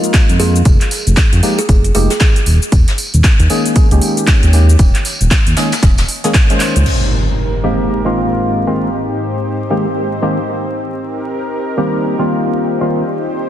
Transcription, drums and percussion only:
0.04 closed hi-hat soft
0.04 shaker medium
0.14 kick loud
0.14 snare loud
0.14 clap loud
0.14 closed hi-hat medium
0.14 tambourine medium
0.14 shaker medium
0.29 closed hi-hat soft
0.29 shaker soft
0.40 open hi-hat medium
0.40 tambourine medium
0.56 shaker medium
0.65 kick loud
0.65 closed hi-hat medium
0.65 tambourine medium
0.65 shaker medium
0.81 clap soft
0.81 closed hi-hat medium
0.81 shaker soft
0.91 snare soft
0.91 open hi-hat loud
0.91 tambourine medium
1.07 closed hi-hat soft
1.07 shaker medium
1.16 kick loud
1.16 snare loud
1.16 clap loud
1.16 closed hi-hat medium
1.16 tambourine medium
1.16 shaker medium
1.33 closed hi-hat medium
1.33 shaker soft
1.43 open hi-hat medium
1.43 tambourine medium
1.59 closed hi-hat soft
1.59 shaker medium
1.69 kick loud
1.69 closed hi-hat medium
1.69 tambourine medium
1.69 shaker medium
1.84 closed hi-hat medium
1.84 shaker soft
1.95 open hi-hat medium
1.95 tambourine medium
2.10 snare medium
2.10 closed hi-hat soft
2.10 shaker medium
2.20 kick loud
2.20 snare loud
2.20 clap loud
2.20 closed hi-hat medium
2.20 tambourine medium
2.20 shaker medium
2.36 closed hi-hat soft
2.36 shaker soft
2.46 open hi-hat medium
2.46 tambourine medium
2.63 shaker medium
2.72 kick loud
2.72 closed hi-hat medium
2.72 tambourine medium
2.72 shaker medium
2.88 snare medium
2.88 closed hi-hat medium
2.88 shaker soft
2.98 open hi-hat loud
2.98 tambourine medium
3.14 closed hi-hat soft
3.14 shaker medium
3.24 kick loud
3.24 snare loud
3.24 clap loud
3.24 closed hi-hat medium
3.24 tambourine medium
3.24 shaker medium
3.39 closed hi-hat soft
3.39 shaker soft
3.50 open hi-hat medium
3.50 tambourine medium
3.65 closed hi-hat soft
3.65 shaker medium
3.76 kick loud
3.76 closed hi-hat medium
3.76 tambourine medium
3.76 shaker medium
3.91 closed hi-hat medium
3.91 shaker soft
4.01 open hi-hat loud
4.01 tambourine medium
4.17 closed hi-hat soft
4.17 shaker medium
4.27 kick loud
4.27 snare loud
4.27 clap loud
4.27 closed hi-hat medium
4.27 tambourine medium
4.27 shaker medium
4.43 closed hi-hat medium
4.43 shaker soft
4.53 open hi-hat medium
4.53 tambourine medium
4.70 shaker medium
4.79 kick loud
4.79 closed hi-hat medium
4.79 tambourine medium
4.79 shaker medium
4.95 clap soft
4.95 closed hi-hat medium
4.95 shaker soft
5.05 snare soft
5.05 open hi-hat loud
5.05 tambourine medium
5.21 closed hi-hat soft
5.21 shaker medium
5.31 kick loud
5.31 snare loud
5.31 clap loud
5.31 closed hi-hat medium
5.31 tambourine medium
5.31 shaker medium
5.47 closed hi-hat medium
5.47 shaker soft
5.57 snare loud
5.57 open hi-hat medium
5.57 tambourine medium
5.72 snare loud
5.72 closed hi-hat soft
5.72 tambourine medium
5.72 shaker medium
5.82 kick loud
5.82 snare loud
5.82 closed hi-hat medium
5.82 shaker medium
5.98 snare medium
5.98 closed hi-hat medium
5.98 tambourine medium
5.98 shaker soft
6.08 open hi-hat loud
6.08 tambourine medium
6.24 snare medium
6.24 closed hi-hat soft
6.24 shaker medium
6.34 kick loud
6.34 snare loud
6.34 clap loud
6.34 closed hi-hat medium
6.34 tambourine medium
6.34 shaker medium
6.50 closed hi-hat medium
6.50 shaker soft
6.60 clap medium
6.60 open hi-hat medium
6.60 tambourine medium
6.76 closed hi-hat soft
6.76 shaker medium
6.86 crash medium

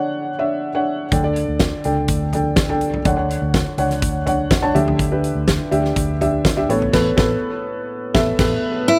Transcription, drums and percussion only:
1.12 kick loud
1.12 closed hi-hat medium
1.36 closed hi-hat medium
1.59 kick medium
1.59 snare medium
1.59 closed hi-hat medium
1.84 closed hi-hat medium
2.08 kick medium
2.08 closed hi-hat loud
2.33 closed hi-hat medium
2.33 floor tom medium
2.56 kick loud
2.56 snare medium
2.56 closed hi-hat medium
2.69 floor tom medium
2.81 closed hi-hat medium
2.94 floor tom medium
3.05 kick loud
3.05 closed hi-hat medium
3.30 closed hi-hat medium
3.54 kick medium
3.54 snare medium
3.54 closed hi-hat medium
3.78 closed hi-hat medium
3.91 snare soft
3.91 closed hi-hat soft
4.02 kick loud
4.02 closed hi-hat medium
4.27 closed hi-hat medium
4.27 floor tom medium
4.51 kick loud
4.51 snare loud
4.51 closed hi-hat medium
4.63 floor tom medium
4.76 closed hi-hat medium
4.88 floor tom medium
4.99 kick medium
4.99 closed hi-hat medium
5.24 closed hi-hat medium
5.48 kick medium
5.48 snare loud
5.48 closed hi-hat medium
5.72 closed hi-hat medium
5.85 snare soft
5.96 kick medium
5.96 closed hi-hat loud
6.21 closed hi-hat medium
6.21 floor tom medium
6.45 kick loud
6.45 snare medium
6.45 closed hi-hat medium
6.57 floor tom soft
6.70 closed hi-hat medium
6.82 floor tom medium
6.93 kick medium
6.93 snare medium
6.93 crash medium
7.18 kick loud
7.18 snare loud
8.15 kick loud
8.15 snare loud
8.39 kick loud
8.39 snare loud
8.39 crash medium

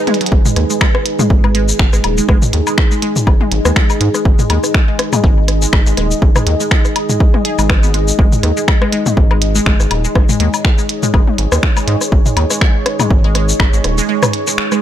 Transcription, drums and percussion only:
0.07 closed hi-hat medium
0.07 high tom medium
0.14 closed hi-hat medium
0.21 closed hi-hat medium
0.26 closed hi-hat medium
0.32 kick loud
0.46 mid tom medium
0.46 cabasa soft
0.56 cross-stick soft
0.56 closed hi-hat loud
0.70 cabasa medium
0.81 finger snap loud
0.81 kick loud
0.81 high woodblock medium
0.95 cross-stick medium
1.06 closed hi-hat loud
1.19 mid tom medium
1.19 high tom medium
1.19 cabasa medium
1.30 kick loud
1.44 cross-stick soft
1.44 high woodblock medium
1.55 closed hi-hat loud
1.69 cabasa medium
1.79 finger snap loud
1.79 kick loud
1.93 cross-stick soft
1.93 cabasa soft
2.04 closed hi-hat medium
2.04 high woodblock medium
2.18 cabasa medium
2.29 kick loud
2.29 cross-stick medium
2.42 mid tom medium
2.42 cabasa soft
2.53 closed hi-hat loud
2.67 cabasa medium
2.67 high woodblock medium
2.78 finger snap loud
2.78 kick loud
2.78 cross-stick soft
2.91 cabasa soft
3.02 closed hi-hat loud
3.16 mid tom medium
3.16 cabasa medium
3.27 kick loud
3.27 cross-stick soft
3.27 high woodblock medium
3.41 high tom medium
3.52 closed hi-hat loud
3.65 cross-stick medium
3.65 cabasa medium
3.76 finger snap loud
3.76 kick loud
3.90 cabasa soft
3.90 high woodblock medium
4.01 closed hi-hat loud
4.14 cross-stick soft
4.14 cabasa medium
4.25 kick loud
4.39 mid tom medium
4.39 cabasa soft
4.50 closed hi-hat loud
4.50 high woodblock medium
4.64 cross-stick soft
4.64 cabasa medium
4.74 finger snap medium
4.74 kick loud
4.99 cross-stick medium
4.99 closed hi-hat loud
5.13 mid tom medium
5.13 high tom medium
5.13 cabasa medium
5.13 high woodblock medium
5.24 kick loud
5.48 cross-stick soft
5.48 closed hi-hat loud
5.62 cabasa medium
5.73 finger snap medium
5.73 kick loud
5.73 high woodblock medium
5.86 cabasa soft
5.97 cross-stick soft
5.97 closed hi-hat loud
6.11 cabasa medium
6.22 kick loud
6.36 cross-stick medium
6.36 mid tom medium
6.36 cabasa soft
6.36 high woodblock medium
6.47 closed hi-hat loud
6.60 cabasa medium
6.71 finger snap medium
6.71 kick loud
6.85 cross-stick soft
6.85 cabasa soft
6.96 closed hi-hat medium
6.96 high woodblock medium
7.09 mid tom medium
7.09 cabasa medium
7.20 kick loud
7.34 cross-stick soft
7.34 high tom medium
7.45 closed hi-hat loud
7.59 cabasa medium
7.59 high woodblock medium
7.70 finger snap medium
7.70 kick loud
7.70 cross-stick medium
7.83 cabasa soft
7.94 closed hi-hat loud
8.08 cabasa medium
8.19 kick loud
8.32 mid tom medium
8.32 cabasa soft
8.43 cross-stick soft
8.43 closed hi-hat medium
8.57 cabasa medium
8.68 finger snap medium
8.68 kick loud
8.68 high woodblock medium
8.82 cross-stick medium
8.93 closed hi-hat loud
9.06 mid tom medium
9.06 high tom medium
9.06 cabasa medium
9.17 kick loud
9.31 cross-stick soft
9.31 high woodblock medium
9.42 closed hi-hat loud
9.55 cabasa medium
9.66 finger snap medium
9.66 kick loud
9.80 cross-stick soft
9.80 cabasa soft
9.91 closed hi-hat medium
9.91 high woodblock medium
10.05 cabasa medium
10.15 kick loud
10.15 cross-stick medium
10.29 mid tom medium
10.29 cabasa soft
10.40 closed hi-hat medium
10.54 cabasa medium
10.54 high woodblock medium
10.65 finger snap medium
10.65 kick loud
10.65 cross-stick soft
10.78 cabasa soft
10.89 closed hi-hat medium
11.03 mid tom medium
11.03 cabasa medium
11.14 kick loud
11.14 cross-stick soft
11.14 high woodblock medium
11.27 high tom medium
11.38 closed hi-hat medium
11.52 cross-stick medium
11.52 cabasa medium
11.63 finger snap medium
11.63 kick loud
11.77 cabasa soft
11.77 high woodblock medium
11.88 closed hi-hat medium
12.01 cross-stick soft
12.01 cabasa medium
12.12 kick loud
12.26 mid tom medium
12.26 cabasa soft
12.37 closed hi-hat medium
12.37 high woodblock medium
12.50 cross-stick soft
12.50 cabasa medium
12.61 finger snap medium
12.61 kick loud
12.86 cross-stick medium
12.86 closed hi-hat medium
13.00 mid tom medium
13.00 high tom medium
13.00 cabasa medium
13.00 high woodblock medium
13.11 kick loud
13.35 cross-stick soft
13.35 closed hi-hat medium
13.49 cabasa medium
13.60 finger snap medium
13.60 kick loud
13.60 high woodblock medium
13.73 cabasa soft
13.84 cross-stick soft
13.84 closed hi-hat medium
13.98 cabasa medium
14.23 cross-stick medium
14.23 mid tom medium
14.23 cabasa soft
14.23 high woodblock medium
14.33 closed hi-hat medium
14.47 cabasa medium
14.58 finger snap medium
14.72 cross-stick soft
14.72 cabasa soft

